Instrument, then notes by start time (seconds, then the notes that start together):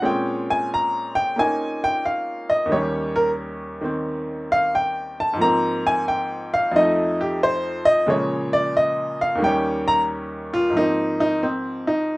upright piano
0.02 A#2 G#3 C4 C#4 G5
0.50 G#5
0.74 A#5
1.15 G5
1.36 A#3 C#4 D#4 G#5
1.84 G5
2.05 F5
2.50 D#5
2.66 D#2 D#3
2.72 G3 C#5
2.76 C#4
3.16 A#4
3.81 D#3 C4
4.52 F5
4.75 G5
5.20 A5
5.33 G#2 F3
5.40 A#3 C4 A#5
5.87 G#5
6.08 G5
6.54 F5
6.72 F2 F3 A3
6.76 D#4 D#5
7.21 G4
7.43 C5
7.85 D#5
8.06 A#2 C#3 F3 G#3 C#5
8.53 D5
8.77 D#5
9.21 F5
9.35 D#2 D#3
9.42 G3 C#4 G5
9.88 A#5
10.54 F4
10.70 G#2 F3
10.76 A#3 D#4
10.81 C4
11.20 D#4
11.43 C4
11.87 D#4